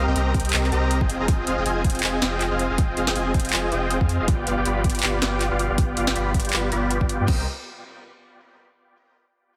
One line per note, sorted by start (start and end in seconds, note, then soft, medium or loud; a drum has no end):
0.07 0.14 C2 medium
0.07 0.14 C4 medium
0.07 0.14 G4 medium
0.07 0.14 A#4 medium
0.07 0.14 D#5 medium
0.07 0.14 G5 loud
0.16 0.33 C2 loud
0.16 0.33 C4 medium
0.16 0.33 G4 medium
0.16 0.33 A#4 medium
0.16 0.33 D#5 medium
0.16 0.33 A#5 loud
0.16 closed hi-hat medium
0.34 0.51 C2 loud
0.34 0.51 C4 medium
0.34 0.51 G4 medium
0.34 0.51 A#4 medium
0.34 0.51 D#5 medium
0.34 0.51 G5 medium
0.34 kick medium
0.34 closed hi-hat soft
0.40 closed hi-hat medium
0.45 closed hi-hat soft
0.49 closed hi-hat medium
0.53 0.70 C2 medium
0.53 0.70 C4 medium
0.53 0.70 G4 medium
0.53 0.70 A#4 medium
0.53 0.70 D#5 medium
0.53 0.70 A#5 loud
0.53 clap loud
0.53 closed hi-hat medium
0.64 clap soft
0.72 1.03 C2 medium
0.72 0.99 C4 medium
0.72 0.99 G4 medium
0.72 0.99 A#4 medium
0.72 0.99 D#5 medium
0.72 0.99 A#5 loud
0.72 closed hi-hat medium
0.91 closed hi-hat medium
1.01 1.18 F1 loud
1.01 1.17 C4 medium
1.01 1.17 F4 medium
1.01 1.17 G#4 medium
1.01 1.17 D#5 medium
1.01 1.17 G5 loud
1.01 kick medium
1.10 closed hi-hat medium
1.20 1.26 F1 medium
1.20 1.26 C4 medium
1.20 1.26 F4 medium
1.20 1.26 G#4 medium
1.20 1.26 D#5 medium
1.20 1.26 A#5 medium
1.28 1.45 F1 loud
1.28 1.45 C4 medium
1.28 1.45 F4 medium
1.28 1.45 G#4 medium
1.28 1.45 D#5 medium
1.28 1.45 G5 medium
1.28 kick loud
1.28 closed hi-hat medium
1.47 1.55 F1 loud
1.47 1.56 C4 medium
1.47 1.56 F4 medium
1.47 1.56 G#4 medium
1.47 1.56 D#5 medium
1.47 1.56 F5 medium
1.47 closed hi-hat medium
1.57 1.64 F1 medium
1.57 1.64 C4 medium
1.57 1.64 F4 medium
1.57 1.64 G#4 medium
1.57 1.64 D#5 medium
1.57 1.64 G5 loud
1.66 1.83 F1 medium
1.66 1.82 C4 medium
1.66 1.82 F4 medium
1.66 1.82 G#4 medium
1.66 1.82 D#5 medium
1.66 1.82 G#5 loud
1.66 closed hi-hat medium
1.84 2.02 F1 loud
1.84 2.01 C4 medium
1.84 2.01 F4 medium
1.84 2.01 G#4 medium
1.84 2.01 D#5 medium
1.84 2.01 G5 medium
1.84 kick medium
1.84 closed hi-hat soft
1.90 closed hi-hat medium
1.95 closed hi-hat soft
1.99 closed hi-hat medium
2.03 2.20 F1 medium
2.03 2.20 C4 medium
2.03 2.20 F4 medium
2.03 2.20 G#4 medium
2.03 2.20 D#5 medium
2.03 2.20 G#5 loud
2.03 clap loud
2.03 closed hi-hat medium
2.22 2.49 F1 loud
2.22 2.49 C4 medium
2.22 2.49 F4 medium
2.22 2.49 G#4 medium
2.22 2.49 D#5 medium
2.22 2.49 G5 loud
2.22 snare medium
2.22 closed hi-hat medium
2.41 clap soft
2.41 closed hi-hat medium
2.51 2.68 F1 loud
2.51 2.67 C4 medium
2.51 2.67 F4 medium
2.51 2.67 G#4 medium
2.51 2.67 D#5 medium
2.51 2.67 F5 loud
2.59 closed hi-hat medium
2.70 2.77 F1 medium
2.70 2.77 C4 medium
2.70 2.77 F4 medium
2.70 2.77 G#4 medium
2.70 2.77 D#5 medium
2.70 2.77 F5 medium
2.78 2.95 F1 medium
2.78 2.95 C4 medium
2.78 2.95 F4 medium
2.78 2.95 G#4 medium
2.78 2.95 D#5 medium
2.78 2.95 G5 medium
2.78 kick loud
2.78 closed hi-hat medium
2.97 3.05 F1 medium
2.97 3.06 C4 medium
2.97 3.06 F4 medium
2.97 3.06 G#4 medium
2.97 3.06 D#5 medium
2.97 3.06 F5 medium
2.97 closed hi-hat medium
3.07 3.14 F1 medium
3.07 3.14 C4 loud
3.07 3.14 F4 medium
3.07 3.14 G#4 medium
3.07 3.14 D#5 medium
3.07 3.14 G5 loud
3.07 snare medium
3.15 3.33 F1 loud
3.15 3.32 C4 medium
3.15 3.32 F4 medium
3.15 3.32 G#4 medium
3.15 3.32 D#5 medium
3.15 3.32 G#5 loud
3.15 closed hi-hat medium
3.34 3.51 F1 loud
3.34 3.51 C4 medium
3.34 3.51 F4 medium
3.34 3.51 G#4 medium
3.34 3.51 D#5 medium
3.34 3.51 G5 medium
3.34 kick medium
3.34 closed hi-hat soft
3.40 closed hi-hat medium
3.45 closed hi-hat soft
3.49 closed hi-hat medium
3.53 3.70 F1 medium
3.53 3.70 C4 medium
3.53 3.70 F4 medium
3.53 3.70 G#4 medium
3.53 3.70 D#5 medium
3.53 3.70 G#5 loud
3.53 clap loud
3.53 closed hi-hat medium
3.72 3.99 F1 medium
3.72 3.98 C4 loud
3.72 3.98 F4 medium
3.72 3.98 G#4 medium
3.72 3.98 D#5 medium
3.72 3.98 G5 loud
3.72 closed hi-hat medium
3.91 closed hi-hat medium
4.01 4.18 F2 loud
4.01 4.17 C4 medium
4.01 4.17 F4 medium
4.01 4.17 G#4 medium
4.01 4.17 D#5 medium
4.01 4.17 F5 loud
4.01 kick medium
4.09 closed hi-hat medium
4.20 4.26 F1 loud
4.20 4.27 C4 medium
4.20 4.27 F4 medium
4.20 4.27 G#4 medium
4.20 4.27 D#5 medium
4.20 4.27 F5 medium
4.28 4.45 G1 loud
4.28 4.45 B3 medium
4.28 4.45 F4 medium
4.28 4.45 G4 medium
4.28 4.45 D5 medium
4.28 4.45 G5 medium
4.28 kick loud
4.28 closed hi-hat medium
4.47 4.55 G1 medium
4.47 4.56 B3 medium
4.47 4.56 F4 medium
4.47 4.56 G4 medium
4.47 4.56 D5 medium
4.47 4.56 F5 medium
4.47 closed hi-hat medium
4.57 4.64 G1 medium
4.57 4.64 B3 loud
4.57 4.64 F4 medium
4.57 4.64 G4 medium
4.57 4.64 D5 medium
4.57 4.64 G5 loud
4.66 4.83 G1 loud
4.66 4.82 B3 medium
4.66 4.82 F4 medium
4.66 4.82 G4 medium
4.66 4.82 D5 medium
4.66 4.82 B5 loud
4.66 closed hi-hat medium
4.84 5.01 G1 loud
4.84 5.01 B3 medium
4.84 5.01 F4 medium
4.84 5.01 G4 medium
4.84 5.01 D5 medium
4.84 5.01 G5 medium
4.84 kick medium
4.84 closed hi-hat soft
4.90 closed hi-hat medium
4.95 closed hi-hat medium
4.99 closed hi-hat medium
5.03 5.20 G1 medium
5.03 5.20 B3 loud
5.03 5.20 F4 medium
5.03 5.20 G4 medium
5.03 5.20 D5 medium
5.03 5.20 B5 loud
5.03 clap loud
5.03 closed hi-hat medium
5.22 5.49 G1 medium
5.22 5.49 B3 loud
5.22 5.49 F4 medium
5.22 5.49 G4 medium
5.22 5.48 D5 medium
5.22 5.49 G5 loud
5.22 snare medium
5.22 closed hi-hat medium
5.41 clap soft
5.41 closed hi-hat medium
5.51 5.68 G1 loud
5.51 5.67 B3 medium
5.51 5.67 F4 medium
5.51 5.67 G4 medium
5.51 5.67 D5 medium
5.51 5.67 F5 loud
5.59 closed hi-hat medium
5.70 5.77 G1 loud
5.70 5.77 B3 medium
5.70 5.77 F4 medium
5.70 5.77 G4 medium
5.70 5.77 D5 medium
5.70 5.77 F5 medium
5.78 5.95 G1 loud
5.78 5.95 B3 medium
5.78 5.95 F4 medium
5.78 5.95 G4 medium
5.78 5.95 D5 medium
5.78 5.95 G5 medium
5.78 kick loud
5.78 closed hi-hat medium
5.97 6.05 G1 medium
5.97 6.06 B3 medium
5.97 6.06 F4 medium
5.97 6.06 G4 medium
5.97 6.06 D5 medium
5.97 6.06 F5 medium
5.97 closed hi-hat medium
6.07 6.14 G1 medium
6.07 6.14 B3 loud
6.07 6.14 F4 medium
6.07 6.14 G4 medium
6.07 6.14 D5 medium
6.07 6.14 G5 loud
6.07 snare medium
6.16 6.33 G1 loud
6.16 6.32 B3 medium
6.16 6.32 F4 medium
6.16 6.32 G4 medium
6.16 6.32 D5 medium
6.16 6.32 B5 loud
6.16 closed hi-hat medium
6.34 6.51 G1 loud
6.34 6.51 B3 medium
6.34 6.51 F4 medium
6.34 6.51 G4 medium
6.34 6.51 D5 medium
6.34 6.51 G5 medium
6.34 kick medium
6.34 closed hi-hat medium
6.40 closed hi-hat medium
6.45 closed hi-hat medium
6.49 closed hi-hat medium
6.53 6.70 G1 medium
6.53 6.70 B3 medium
6.53 6.70 F4 medium
6.53 6.70 G4 medium
6.53 6.70 D5 medium
6.53 6.70 B5 loud
6.53 clap loud
6.53 closed hi-hat medium
6.72 6.99 G1 medium
6.72 6.98 B3 loud
6.72 6.98 F4 medium
6.72 6.98 G4 medium
6.72 6.98 D5 medium
6.72 6.98 B5 loud
6.72 closed hi-hat medium
6.91 closed hi-hat medium
7.01 7.18 G1 loud
7.01 7.17 B3 medium
7.01 7.17 F4 medium
7.01 7.17 G4 medium
7.01 7.17 D5 medium
7.01 7.17 G5 loud
7.01 kick medium
7.09 closed hi-hat medium
7.20 7.27 G2 loud
7.20 7.26 B3 medium
7.20 7.26 F4 medium
7.20 7.26 G4 medium
7.20 7.26 D5 medium
7.20 7.26 G5 medium
7.28 7.46 C2 loud
7.28 7.42 C4 medium
7.28 7.42 G4 medium
7.28 7.42 A#4 medium
7.28 7.42 D#5 medium
7.28 7.42 G5 medium
7.28 kick loud
7.28 crash medium